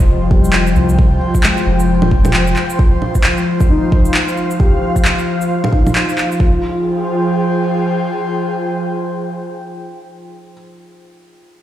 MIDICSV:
0, 0, Header, 1, 5, 480
1, 0, Start_track
1, 0, Key_signature, -4, "minor"
1, 0, Tempo, 451128
1, 1048, Time_signature, 4, 2, 24, 8
1, 12369, End_track
2, 0, Start_track
2, 0, Title_t, "Analog synth pad"
2, 0, Program_c, 0, 89
2, 0, Note_on_c, 0, 53, 98
2, 0, Note_on_c, 0, 65, 78
2, 0, Note_on_c, 0, 72, 81
2, 0, Note_on_c, 0, 75, 81
2, 0, Note_on_c, 0, 79, 94
2, 1019, Note_off_c, 0, 75, 0
2, 4109, Note_on_c, 0, 77, 91
2, 4248, Note_off_c, 0, 79, 0
2, 6797, Note_off_c, 0, 53, 0
2, 6808, Note_off_c, 0, 72, 0
2, 6810, Note_off_c, 0, 77, 0
2, 6810, Note_on_c, 0, 53, 77
2, 6813, Note_off_c, 0, 65, 0
2, 6899, Note_on_c, 0, 65, 76
2, 6972, Note_on_c, 0, 68, 79
2, 7027, Note_on_c, 0, 72, 77
2, 7102, Note_on_c, 0, 79, 74
2, 11201, Note_off_c, 0, 53, 0
2, 11290, Note_off_c, 0, 65, 0
2, 11364, Note_off_c, 0, 68, 0
2, 11418, Note_off_c, 0, 72, 0
2, 11455, Note_off_c, 0, 79, 0
2, 12369, End_track
3, 0, Start_track
3, 0, Title_t, "Felt piano"
3, 0, Program_c, 1, 0
3, 0, Control_c, 1, 64, 127
3, 0, Note_on_c, 1, 55, 59
3, 331, Note_off_c, 1, 55, 0
3, 331, Note_on_c, 1, 55, 62
3, 1235, Note_off_c, 1, 55, 0
3, 1528, Note_on_c, 1, 56, 58
3, 2434, Note_off_c, 1, 56, 0
3, 3930, Note_on_c, 1, 63, 71
3, 4835, Note_off_c, 1, 63, 0
3, 4891, Note_on_c, 1, 67, 62
3, 5796, Note_off_c, 1, 67, 0
3, 6089, Note_on_c, 1, 63, 50
3, 6808, Note_on_c, 1, 65, 54
3, 6824, Control_c, 1, 64, 0
3, 6994, Note_off_c, 1, 63, 0
3, 7010, Control_c, 1, 64, 127
3, 11199, Note_off_c, 1, 65, 0
3, 12369, End_track
4, 0, Start_track
4, 0, Title_t, "Sub bass"
4, 0, Program_c, 2, 38
4, 0, Note_on_c, 2, 29, 97
4, 796, Note_off_c, 2, 29, 0
4, 805, Note_on_c, 2, 36, 85
4, 1274, Note_off_c, 2, 36, 0
4, 1767, Note_on_c, 2, 29, 85
4, 2715, Note_off_c, 2, 29, 0
4, 12369, End_track
5, 0, Start_track
5, 0, Title_t, "Drums"
5, 329, Note_on_c, 9, 36, 99
5, 435, Note_off_c, 9, 36, 0
5, 472, Note_on_c, 9, 82, 56
5, 563, Note_on_c, 9, 39, 99
5, 578, Note_off_c, 9, 82, 0
5, 669, Note_off_c, 9, 39, 0
5, 710, Note_on_c, 9, 82, 44
5, 806, Note_off_c, 9, 82, 0
5, 806, Note_on_c, 9, 82, 30
5, 912, Note_off_c, 9, 82, 0
5, 948, Note_on_c, 9, 82, 55
5, 1048, Note_on_c, 9, 36, 115
5, 1054, Note_off_c, 9, 82, 0
5, 1155, Note_off_c, 9, 36, 0
5, 1433, Note_on_c, 9, 36, 61
5, 1433, Note_on_c, 9, 82, 57
5, 1525, Note_on_c, 9, 39, 101
5, 1539, Note_off_c, 9, 36, 0
5, 1540, Note_off_c, 9, 82, 0
5, 1632, Note_off_c, 9, 39, 0
5, 1673, Note_on_c, 9, 82, 32
5, 1780, Note_off_c, 9, 82, 0
5, 1911, Note_on_c, 9, 82, 54
5, 2018, Note_off_c, 9, 82, 0
5, 2149, Note_on_c, 9, 61, 60
5, 2249, Note_on_c, 9, 36, 99
5, 2256, Note_off_c, 9, 61, 0
5, 2355, Note_off_c, 9, 36, 0
5, 2392, Note_on_c, 9, 61, 57
5, 2392, Note_on_c, 9, 82, 55
5, 2484, Note_on_c, 9, 39, 101
5, 2498, Note_off_c, 9, 61, 0
5, 2498, Note_off_c, 9, 82, 0
5, 2590, Note_off_c, 9, 39, 0
5, 2630, Note_on_c, 9, 82, 45
5, 2726, Note_off_c, 9, 82, 0
5, 2726, Note_on_c, 9, 39, 57
5, 2726, Note_on_c, 9, 82, 29
5, 2832, Note_off_c, 9, 39, 0
5, 2832, Note_off_c, 9, 82, 0
5, 2871, Note_on_c, 9, 82, 54
5, 2970, Note_on_c, 9, 36, 120
5, 2977, Note_off_c, 9, 82, 0
5, 3076, Note_off_c, 9, 36, 0
5, 3211, Note_on_c, 9, 61, 35
5, 3317, Note_off_c, 9, 61, 0
5, 3352, Note_on_c, 9, 82, 55
5, 3354, Note_on_c, 9, 36, 62
5, 3444, Note_on_c, 9, 39, 103
5, 3458, Note_off_c, 9, 82, 0
5, 3461, Note_off_c, 9, 36, 0
5, 3551, Note_off_c, 9, 39, 0
5, 3591, Note_on_c, 9, 82, 30
5, 3697, Note_off_c, 9, 82, 0
5, 3833, Note_on_c, 9, 82, 50
5, 3836, Note_on_c, 9, 36, 99
5, 3939, Note_off_c, 9, 82, 0
5, 3942, Note_off_c, 9, 36, 0
5, 4172, Note_on_c, 9, 36, 98
5, 4278, Note_off_c, 9, 36, 0
5, 4312, Note_on_c, 9, 82, 52
5, 4407, Note_on_c, 9, 39, 98
5, 4419, Note_off_c, 9, 82, 0
5, 4514, Note_off_c, 9, 39, 0
5, 4556, Note_on_c, 9, 82, 41
5, 4651, Note_off_c, 9, 82, 0
5, 4651, Note_on_c, 9, 82, 28
5, 4757, Note_off_c, 9, 82, 0
5, 4796, Note_on_c, 9, 82, 51
5, 4893, Note_on_c, 9, 36, 112
5, 4902, Note_off_c, 9, 82, 0
5, 4999, Note_off_c, 9, 36, 0
5, 5278, Note_on_c, 9, 36, 57
5, 5280, Note_on_c, 9, 82, 50
5, 5371, Note_on_c, 9, 39, 99
5, 5384, Note_off_c, 9, 36, 0
5, 5386, Note_off_c, 9, 82, 0
5, 5478, Note_off_c, 9, 39, 0
5, 5519, Note_on_c, 9, 82, 27
5, 5625, Note_off_c, 9, 82, 0
5, 5758, Note_on_c, 9, 82, 49
5, 5865, Note_off_c, 9, 82, 0
5, 6000, Note_on_c, 9, 61, 54
5, 6092, Note_on_c, 9, 36, 95
5, 6107, Note_off_c, 9, 61, 0
5, 6198, Note_off_c, 9, 36, 0
5, 6241, Note_on_c, 9, 61, 52
5, 6241, Note_on_c, 9, 82, 49
5, 6335, Note_on_c, 9, 39, 96
5, 6347, Note_off_c, 9, 61, 0
5, 6347, Note_off_c, 9, 82, 0
5, 6442, Note_off_c, 9, 39, 0
5, 6480, Note_on_c, 9, 82, 39
5, 6576, Note_off_c, 9, 82, 0
5, 6576, Note_on_c, 9, 39, 55
5, 6576, Note_on_c, 9, 82, 27
5, 6682, Note_off_c, 9, 39, 0
5, 6682, Note_off_c, 9, 82, 0
5, 6721, Note_on_c, 9, 82, 47
5, 6809, Note_on_c, 9, 36, 97
5, 6828, Note_off_c, 9, 82, 0
5, 6916, Note_off_c, 9, 36, 0
5, 12369, End_track
0, 0, End_of_file